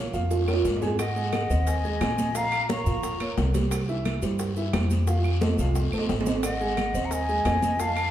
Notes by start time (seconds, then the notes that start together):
Already playing: A#3 A#4 C#5
0.13 F2 F3 F4 F5, high bongo, high conga, short guiro, maracas
0.31 high bongo, high conga, high timbale, long guiro, maracas
0.42 high timbale
0.48 A#3 A#4 C#5, high bongo, high conga, claves, maracas
0.53 high timbale
0.65 G#2, low bongo, high conga, short guiro, maracas
0.76 low timbale
0.82 G#3 G#4 G#5, low bongo, high conga, short guiro, maracas
0.87 low timbale
0.99 D#5 F#5, high bongo, high conga, high timbale, long guiro, claves, maracas
1.16 G#3 G#4 G#5, high bongo, high conga, maracas
1.33 high bongo, high conga, high timbale, short guiro, claves, maracas
1.50 D#2 C4 C5 D#5, high bongo, high conga, short guiro, maracas
1.67 D#5 G#5, high bongo, high conga, high timbale, long guiro, maracas
1.84 G#3 G#4 G#5, high bongo, high conga, maracas
2.01 A#1 C4 C5 D#5, high bongo, low bongo, high conga, high timbale, low timbale, short guiro, claves, maracas
2.18 high conga, short guiro, maracas
2.35 F3 F4 F5 A#5, high bongo, high conga, high timbale, long guiro, maracas
2.52 high bongo, high conga, high timbale, claves, maracas
2.69 A#3 A#4 C#5 A#5 C#6, high bongo, high conga, high timbale, short guiro, maracas
2.86 A#2 F3 F4 F5, high bongo, short guiro, maracas
3.03 high bongo, high conga, high timbale, long guiro, maracas
3.20 A#3 A#4 C#5, high conga, high timbale, claves, maracas
3.37 C2, high bongo, low bongo, high conga, low timbale, short guiro, maracas
3.54 G3 G4 C5, high bongo, high conga, high timbale, short guiro, maracas
3.71 high bongo, high conga, high timbale, long guiro, claves, maracas
3.88 E3 E4 E5, high bongo, high conga, maracas
4.05 high bongo, high conga, high timbale, short guiro, claves, maracas
4.22 G2 G3 G4 C5, high bongo, high conga, short guiro, maracas
4.39 high bongo, high conga, high timbale, long guiro, maracas
4.56 E3 E4 E5, high bongo, high conga, maracas
4.73 F2 G3 G4 C5, high bongo, low bongo, high conga, high timbale, short guiro, claves, maracas
4.90 high conga, short guiro, maracas
5.07 F3 F4 F5, high bongo, high conga, high timbale, long guiro, maracas
5.19 high timbale
5.24 high bongo, high conga, claves, maracas
5.41 A3 A4 C5, high bongo, high conga, low timbale, short guiro, maracas
5.58 C2 F3 F4 F5, high bongo, short guiro, maracas
5.64 high timbale
5.75 high bongo, high conga, low timbale, long guiro, maracas
5.92 A#1 A3 A4 C5, high conga, claves, maracas
5.98 low timbale
6.09 G#1, high bongo, low bongo, high conga, low timbale, short guiro, maracas
6.21 low timbale
6.26 C4 C5 D#5, high bongo, high conga, short guiro, maracas
6.32 low timbale
6.43 D#5 F#5, high bongo, high conga, high timbale, long guiro, claves, maracas
6.60 G#3 G#4 G#5, high bongo, high conga, maracas
6.77 high bongo, high conga, high timbale, short guiro, claves, maracas
6.94 D#2 C4 C5 D#5, high bongo, high conga, short guiro, maracas
7.04 F#5 A#5
7.11 D#5 G#5, high bongo, high conga, high timbale, long guiro, maracas
7.28 G#3 G#4 G#5, high bongo, high conga, maracas
7.45 F2 C4 C5 D#5, high bongo, low bongo, high conga, high timbale, low timbale, short guiro, claves, maracas
7.62 high conga, short guiro, maracas
7.79 F3 F4 F5 A5, high bongo, high conga, high timbale, long guiro, maracas
7.96 high bongo, high conga, high timbale, claves, maracas